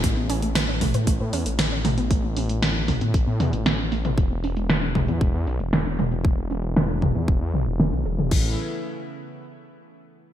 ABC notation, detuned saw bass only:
X:1
M:4/4
L:1/16
Q:1/4=116
K:A
V:1 name="Detuned saw bass" clef=bass
A,,, A,,, A,,, A,,, A,,, A,,, A,,, A,, A,,, A,, E,, A,,, A,,, A,,, A,,, A,,, | A,,, A,,, A,,, A,,, A,,, A,,, A,,, A,, A,,, A,, E,, A,,, A,,, A,,, A,,, A,,, | E,,, E,,, E,,, E,,, E,,, E,,, E,,, E,, E,,, E,, B,,, E,,, E,,, E,,, E,,, E,,, | E,,, E,,, E,,, E,,, E,,, E,,, E,,, E,, E,,, E,, B,,, E,,, E,,, B,,, E,,, E,,, |
A,,,2 z12 z2 |]